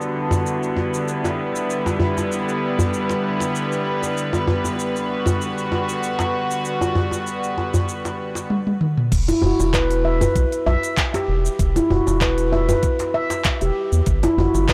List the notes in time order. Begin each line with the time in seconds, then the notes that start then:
Already playing: D3 G3 B3 E4 F#4 A4
0.02 shaker
0.31 djembe slap, djembe bass, shaker
0.46 shaker
0.63 shaker
0.77 B4, djembe tone
0.94 shaker
1.08 shaker
1.24 djembe slap, djembe tone, shaker
1.56 shaker
1.70 shaker
1.86 djembe tone, shaker
2.00 djembe bass
2.18 djembe tone, shaker
2.32 shaker
2.49 shaker
2.79 djembe bass, shaker
2.94 shaker
3.09 djembe slap, shaker
3.40 djembe slap, shaker
3.56 shaker
3.72 shaker
4.03 djembe slap, shaker
4.18 shaker
4.33 djembe tone, shaker
4.48 djembe bass
4.64 djembe tone, shaker
4.80 shaker
4.96 shaker
5.02 F#4
5.26 djembe slap, djembe bass, shaker
5.42 shaker
5.58 shaker
5.72 djembe tone
5.89 shaker
6.03 shaker
6.19 djembe slap, djembe tone, shaker
6.51 shaker
6.65 shaker
6.81 djembe tone, shaker
6.95 djembe bass
7.11 djembe tone, shaker
7.27 shaker
7.44 shaker
7.58 djembe tone
7.74 djembe bass, shaker
7.89 shaker
8.05 djembe slap, shaker
8.35 djembe slap, shaker
8.50 high tom
8.67 high tom
8.81 mid tom
8.98 mid tom
9.12 E1, kick, open hi-hat, crash, shaker
9.28 E4, open hi-hat, djembe tone, shaker
9.42 E1 F#4, djembe bass
9.59 E1, djembe tone, shaker
9.74 B4, kick, clap, open hi-hat, shaker
9.91 open hi-hat, shaker
10.05 E5
10.21 B4, open hi-hat, djembe bass, shaker
10.35 B1, kick, open hi-hat, shaker
10.52 open hi-hat, shaker
10.66 B1 E5, djembe tone
10.83 open hi-hat, shaker
10.97 kick, clap, open hi-hat, shaker
11.14 G4, open hi-hat, djembe slap, djembe tone, shaker
11.28 E1
11.46 shaker
11.59 E1, kick, open hi-hat, shaker
11.76 E4, open hi-hat, djembe tone, shaker
11.90 E1 F#4, djembe bass
12.07 E1, djembe tone, shaker
12.21 B4, kick, clap, open hi-hat, shaker
12.38 open hi-hat, shaker
12.52 E5, djembe tone
12.69 B4, open hi-hat, djembe bass, shaker
12.83 kick, open hi-hat, shaker
12.99 open hi-hat, djembe slap, shaker
13.14 E5
13.30 open hi-hat, djembe slap, shaker
13.44 kick, clap, open hi-hat, shaker
13.61 E1 G4, open hi-hat, shaker
13.92 E2, shaker
14.06 G1, kick, open hi-hat, shaker
14.23 E4, open hi-hat, djembe tone, shaker
14.37 G1 F#4, djembe bass
14.54 G1, djembe tone, shaker
14.69 B4, kick, clap, open hi-hat, shaker